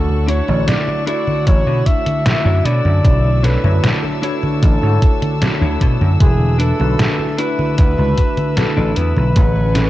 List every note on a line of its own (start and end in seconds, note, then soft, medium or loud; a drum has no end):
0.00 0.40 D2 loud
0.00 0.43 A3 medium
0.00 0.43 D4 medium
0.00 9.33 D4 medium
0.00 0.44 E4 medium
0.00 0.44 F#4 medium
0.00 0.26 A4 loud
0.00 0.44 C#5 medium
0.00 2.63 F#5 medium
0.00 2.61 C#6 loud
0.00 9.32 E6 loud
0.09 high conga soft
0.27 0.48 D4 loud
0.27 0.48 E4 loud
0.27 0.48 F#4 loud
0.27 0.66 C#5 loud
0.27 0.49 C#5 loud
0.27 closed hi-hat medium
0.48 0.63 A1 loud
0.48 1.02 A3 loud
0.48 1.03 D4 medium
0.48 1.03 E4 medium
0.48 1.03 F#4 medium
0.48 1.03 D5 loud
0.48 high conga medium
0.67 1.05 D5 loud
0.67 muted clean electric guitar stroke soft
0.67 snare loud
0.67 closed hi-hat medium
0.67 high conga soft
0.87 muted clean electric guitar stroke medium
0.87 high conga soft
1.07 1.62 A3 loud
1.07 1.76 D4 loud
1.07 1.62 D4 medium
1.07 1.76 E4 loud
1.07 1.62 E4 medium
1.07 1.77 F#4 loud
1.07 1.62 F#4 medium
1.07 1.77 C#5 loud
1.07 1.44 D5 loud
1.07 1.63 C#6 loud
1.07 closed hi-hat medium
1.27 high conga medium
1.47 1.61 A1 medium
1.47 1.88 C#5 loud
1.47 kick loud
1.47 closed hi-hat medium
1.47 high conga soft
1.66 1.81 B2 medium
1.66 2.21 A3 loud
1.66 2.21 D4 medium
1.66 2.21 E4 medium
1.66 2.21 F#4 medium
1.66 2.21 C#6 loud
1.66 high conga soft
1.86 2.67 E5 loud
1.86 kick medium
1.86 closed hi-hat medium
2.06 closed hi-hat soft
2.06 high conga medium
2.25 3.00 A3 medium
2.25 3.00 D4 medium
2.25 3.00 E4 medium
2.25 3.00 F#4 medium
2.25 3.00 E5 medium
2.25 snare loud
2.25 closed hi-hat medium
2.25 high conga soft
2.45 2.60 F#2 loud
2.45 2.63 D4 medium
2.45 2.64 E4 medium
2.45 2.65 F#4 medium
2.45 2.65 C#5 loud
2.45 high conga soft
2.64 2.80 B2 medium
2.64 3.28 D4 medium
2.64 3.29 E4 medium
2.64 3.29 A4 medium
2.64 3.29 C#5 loud
2.64 3.46 D5 loud
2.64 6.17 A5 medium
2.64 6.17 C#6 medium
2.64 closed hi-hat medium
2.85 2.99 F#2 medium
2.85 high conga medium
3.04 3.56 B1 loud
3.04 3.59 A3 medium
3.04 3.59 D4 medium
3.04 3.60 E4 medium
3.04 3.60 F#4 medium
3.04 3.60 D5 medium
3.04 kick loud
3.04 closed hi-hat medium
3.04 high conga soft
3.25 high conga soft
3.43 3.64 D4 loud
3.43 3.64 E4 loud
3.43 3.64 A4 loud
3.43 3.96 B4 loud
3.43 3.65 C#5 loud
3.43 snare medium
3.43 closed hi-hat medium
3.64 3.78 F#2 loud
3.64 4.18 A3 loud
3.64 4.18 D4 medium
3.64 4.18 E4 medium
3.64 4.19 F#4 medium
3.64 4.19 C#5 loud
3.64 high conga medium
3.83 muted clean electric guitar stroke soft
3.83 snare loud
3.83 closed hi-hat medium
3.83 high conga soft
4.03 muted clean electric guitar stroke medium
4.03 high conga soft
4.22 4.77 A3 loud
4.22 4.92 D4 loud
4.22 4.78 D4 medium
4.22 4.92 E4 loud
4.22 4.78 E4 medium
4.22 4.78 F#4 medium
4.22 4.92 A4 loud
4.22 5.77 A4 loud
4.22 4.78 C#5 loud
4.22 4.93 C#5 loud
4.22 closed hi-hat medium
4.43 high conga medium
4.63 4.77 A1 medium
4.63 kick loud
4.63 closed hi-hat medium
4.63 high conga soft
4.82 4.97 G#2 medium
4.82 5.36 A3 loud
4.82 5.37 D4 medium
4.82 5.37 E4 medium
4.82 5.37 F#4 medium
4.82 5.37 C#5 loud
4.82 high conga soft
5.02 kick loud
5.02 closed hi-hat medium
5.22 closed hi-hat soft
5.22 high conga medium
5.41 6.15 A3 medium
5.41 6.16 D4 medium
5.41 6.16 E4 medium
5.41 6.16 F#4 medium
5.41 6.16 C#5 medium
5.41 snare loud
5.41 closed hi-hat medium
5.41 high conga soft
5.61 5.76 D2 loud
5.61 6.10 D4 medium
5.61 6.11 E4 medium
5.61 6.11 A4 medium
5.61 6.11 C#5 loud
5.61 high conga soft
5.81 5.96 B2 loud
5.81 kick medium
5.81 closed hi-hat medium
6.01 6.15 F#2 medium
6.01 high conga medium
6.20 6.71 E1 loud
6.20 6.75 A3 medium
6.20 6.75 D4 medium
6.20 6.75 E4 medium
6.20 6.75 F#4 medium
6.20 6.58 G#4 loud
6.20 6.76 B4 loud
6.20 9.33 E5 medium
6.20 9.90 B5 medium
6.20 kick loud
6.20 closed hi-hat medium
6.20 high conga soft
6.40 high conga soft
6.59 6.79 D4 loud
6.59 6.80 E4 loud
6.59 7.40 A4 loud
6.59 6.80 A4 loud
6.59 6.80 B4 loud
6.59 closed hi-hat medium
6.79 6.94 B1 loud
6.79 7.34 A3 loud
6.79 7.34 D4 medium
6.79 7.34 E4 medium
6.79 7.34 F#4 medium
6.79 7.35 B4 loud
6.79 high conga medium
6.99 muted clean electric guitar stroke soft
6.99 snare loud
6.99 closed hi-hat medium
6.99 high conga soft
7.19 muted clean electric guitar stroke medium
7.19 high conga soft
7.38 7.93 A3 loud
7.38 8.08 D4 loud
7.38 7.94 D4 medium
7.38 8.08 E4 loud
7.38 7.94 E4 medium
7.38 7.94 F#4 medium
7.38 8.08 A4 loud
7.38 7.77 B4 loud
7.38 8.09 B4 loud
7.38 7.94 B4 loud
7.38 closed hi-hat medium
7.59 high conga medium
7.78 7.93 D2 medium
7.78 8.59 B4 loud
7.78 kick loud
7.78 closed hi-hat medium
7.78 high conga soft
7.97 8.13 C#2 medium
7.97 8.52 A3 loud
7.97 8.53 D4 medium
7.97 8.53 E4 medium
7.97 8.53 F#4 medium
7.97 8.53 B4 loud
7.97 high conga soft
8.18 kick medium
8.18 closed hi-hat medium
8.37 closed hi-hat soft
8.37 high conga medium
8.57 9.31 A3 medium
8.57 9.31 D4 medium
8.57 9.32 E4 medium
8.57 9.32 F#4 medium
8.57 8.98 A4 loud
8.57 9.32 B4 medium
8.57 snare loud
8.57 closed hi-hat medium
8.57 high conga soft
8.77 8.92 A1 loud
8.77 9.26 D4 medium
8.77 9.26 E4 medium
8.77 9.27 A4 medium
8.77 9.27 B4 loud
8.77 high conga soft
8.96 9.12 E2 loud
8.96 9.90 B4 loud
8.96 closed hi-hat medium
9.17 9.31 B1 medium
9.17 high conga medium
9.35 9.87 A1 loud
9.35 9.90 A3 medium
9.35 9.90 C#4 medium
9.35 9.90 E4 medium
9.35 9.90 G#4 medium
9.35 9.90 B4 medium
9.35 9.90 G#5 medium
9.35 9.90 C#6 loud
9.35 kick loud
9.35 closed hi-hat medium
9.35 high conga soft
9.56 high conga soft
9.75 9.90 C#4 loud
9.75 9.90 G#4 loud
9.75 9.90 A4 loud
9.75 9.90 B4 loud
9.75 snare medium
9.75 closed hi-hat medium